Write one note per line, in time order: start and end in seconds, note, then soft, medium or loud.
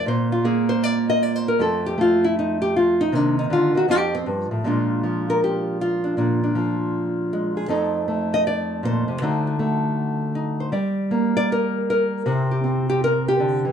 0.06 1.59 A#2 medium
0.06 0.32 C5 medium
0.32 0.44 F4 medium
0.44 1.57 A#3 medium
0.44 0.70 G#4 medium
0.69 0.83 C5 medium
0.83 1.08 D5 medium
1.10 1.23 D#5 loud
1.23 1.36 D5 medium
1.36 1.47 C5 medium
1.48 1.60 A#4 medium
1.59 3.12 F2 medium
1.59 1.97 A3 medium
1.59 3.11 C4 soft
1.59 1.85 A4 medium
1.86 1.98 G4 medium
1.98 3.10 A3 medium
1.98 2.24 F4 medium
2.24 2.36 E4 medium
2.39 2.61 D#4 medium
2.62 2.74 G4 loud
2.76 3.00 F4 medium
3.01 3.15 D#4 medium
3.12 3.50 C3 medium
3.12 3.74 D#3 soft
3.12 3.87 A#3 medium
3.12 3.38 D4 medium
3.39 3.51 D#4 medium
3.50 3.75 D3 medium
3.50 3.76 F4 medium
3.75 3.88 D#3 medium
3.75 3.89 F#4 medium
3.88 4.26 F2 medium
3.88 4.64 F3 soft
3.88 4.13 C4 soft
3.88 4.14 D#4 soft
3.88 4.14 G4 medium
4.15 4.27 C4 medium
4.26 4.51 G2 medium
4.51 4.64 A2 medium
4.64 6.16 A#2 medium
4.64 5.03 F3 soft
4.64 7.31 G#3 soft
4.64 6.03 D4 soft
4.64 5.29 F4 soft
5.03 6.55 F3 medium
5.30 5.41 A#4 medium
5.44 5.80 G4 medium
5.81 6.43 F4 medium
6.04 6.15 D4 soft
6.17 7.69 A#2 medium
6.17 6.42 D4 medium
6.44 7.68 D4 soft
6.55 7.67 F3 medium
7.33 7.70 G#3 medium
7.57 7.68 G#4 soft
7.68 9.21 F2 medium
7.68 8.07 A3 medium
7.68 9.20 D#4 medium
7.68 9.20 A4 medium
7.68 8.33 C5 medium
8.08 9.20 A3 medium
8.34 8.46 D#5 loud
8.47 8.84 D5 medium
8.83 9.08 A#2 medium
8.83 9.47 C5 medium
9.08 9.21 C3 medium
9.22 10.72 D3 medium
9.22 9.58 A3 soft
9.22 10.34 D#4 medium
9.22 9.46 F#4 soft
9.47 10.72 F#4 soft
9.59 10.71 A3 medium
10.35 10.71 D#4 medium
10.60 10.71 C5 soft
10.72 12.23 G3 medium
10.72 11.35 D5 soft
11.11 12.23 A#3 medium
11.37 11.49 D5 loud
11.52 11.88 A#4 medium
11.90 12.51 A#4 medium
12.26 13.72 C3 medium
12.26 12.63 C4 medium
12.26 13.72 E4 soft
12.51 12.88 G4 medium
12.64 13.64 C4 medium
12.89 13.01 G4 medium
13.04 13.27 A#4 loud
13.28 13.72 G4 loud
13.40 13.64 D3 medium
13.65 13.72 E3 medium